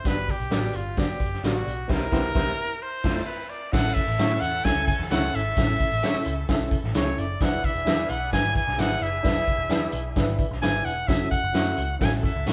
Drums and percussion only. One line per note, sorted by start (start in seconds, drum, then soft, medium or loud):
0.05 kick loud
0.05 snare loud
0.05 closed hi-hat loud
0.05 tambourine medium
0.29 kick medium
0.29 closed hi-hat medium
0.40 closed hi-hat medium
0.51 snare loud
0.51 closed hi-hat medium
0.51 tambourine medium
0.73 closed hi-hat medium
0.97 kick loud
0.97 snare loud
0.97 closed hi-hat medium
0.97 tambourine medium
1.09 closed hi-hat soft
1.20 kick loud
1.20 closed hi-hat medium
1.34 snare soft
1.44 snare loud
1.44 closed hi-hat loud
1.44 tambourine medium
1.68 closed hi-hat medium
1.89 kick loud
1.89 snare loud
1.89 crash medium
2.12 kick loud
2.12 snare loud
2.35 kick loud
2.35 snare loud
3.04 kick loud
3.04 snare loud
3.04 crash medium
3.73 kick loud
3.73 snare loud
3.73 crash loud
3.73 tambourine medium
3.96 kick loud
3.96 closed hi-hat medium
4.07 closed hi-hat medium
4.19 snare loud
4.19 closed hi-hat medium
4.19 tambourine loud
4.41 closed hi-hat loud
4.65 kick loud
4.65 snare loud
4.65 closed hi-hat loud
4.65 tambourine medium
4.88 kick loud
4.88 closed hi-hat medium
5.01 snare soft
5.11 snare loud
5.11 closed hi-hat loud
5.11 tambourine medium
5.34 closed hi-hat medium
5.57 kick loud
5.57 snare loud
5.57 closed hi-hat loud
5.57 tambourine medium
5.80 kick loud
5.80 closed hi-hat medium
5.91 closed hi-hat medium
6.03 snare loud
6.03 closed hi-hat medium
6.03 tambourine loud
6.25 closed hi-hat loud
6.49 kick loud
6.49 snare loud
6.49 closed hi-hat loud
6.49 tambourine medium
6.71 kick loud
6.71 closed hi-hat medium
6.84 snare soft
6.94 snare loud
6.94 closed hi-hat loud
6.94 tambourine medium
7.18 closed hi-hat medium
7.40 kick loud
7.40 snare loud
7.40 closed hi-hat loud
7.40 tambourine medium
7.64 kick medium
7.64 closed hi-hat medium
7.75 closed hi-hat medium
7.86 snare loud
7.86 closed hi-hat medium
7.86 tambourine loud
8.09 closed hi-hat medium
8.33 kick loud
8.33 snare loud
8.33 closed hi-hat medium
8.33 tambourine medium
8.45 closed hi-hat soft
8.55 kick loud
8.55 closed hi-hat medium
8.68 snare soft
8.79 snare loud
8.79 closed hi-hat loud
8.79 tambourine loud
9.02 closed hi-hat medium
9.25 kick loud
9.25 snare loud
9.25 closed hi-hat loud
9.25 tambourine medium
9.48 kick medium
9.48 closed hi-hat medium
9.70 snare loud
9.70 closed hi-hat medium
9.70 tambourine loud
9.92 closed hi-hat loud
10.16 kick loud
10.16 snare loud
10.16 closed hi-hat loud
10.16 tambourine medium
10.28 closed hi-hat soft
10.39 kick loud
10.39 closed hi-hat medium
10.52 snare soft
10.62 snare loud
10.62 closed hi-hat loud
10.62 tambourine loud
10.87 closed hi-hat medium
11.08 kick loud
11.08 snare loud
11.08 closed hi-hat loud
11.08 tambourine medium
11.32 kick loud
11.32 closed hi-hat medium
11.54 snare loud
11.54 closed hi-hat medium
11.54 tambourine loud
11.77 closed hi-hat loud
12.01 kick loud
12.01 snare loud
12.01 closed hi-hat medium
12.01 tambourine medium
12.13 closed hi-hat soft
12.23 kick loud
12.23 closed hi-hat medium
12.47 snare loud
12.47 closed hi-hat loud
12.47 tambourine loud